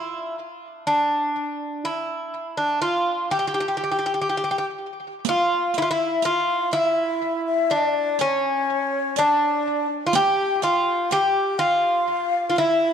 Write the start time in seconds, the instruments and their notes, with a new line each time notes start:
Already playing: bouzouki E4
0.87 bouzouki D4
1.85 bouzouki E4
2.57 bouzouki D4
2.82 bouzouki F4
3.31 bouzouki G4
3.39 bouzouki G4
3.47 bouzouki G4
3.54 bouzouki G4
3.60 bouzouki G4
3.68 bouzouki G4
3.77 bouzouki G4
3.84 bouzouki G4
3.92 bouzouki G4
3.99 bouzouki G4
4.06 bouzouki G4
4.14 bouzouki G4
4.21 bouzouki G4
4.29 bouzouki G4
4.37 bouzouki G4
4.44 bouzouki G4
4.51 bouzouki G4
4.58 bouzouki G4
5.25 ney F5, riq
5.29 bouzouki F4
5.74 ney E5, riq
5.78 bouzouki E4
5.82 bouzouki F4
5.90 bouzouki E4, ney E5
6.22 bouzouki F4, ney F5, riq
6.71 bouzouki E4, ney E5, riq
7.47 ney E5
7.70 bouzouki D4, ney D5, riq
8.19 bouzouki C#4, ney C#5, riq
9.16 bouzouki D4, ney D5, riq
10.07 bouzouki F4
10.13 bouzouki G4, ney G5, riq
10.62 bouzouki F4, ney F5, riq
11.10 bouzouki G4, ney G5, riq
11.59 bouzouki F4, ney F5, riq
12.50 bouzouki F4
12.56 bouzouki E4, ney E5, riq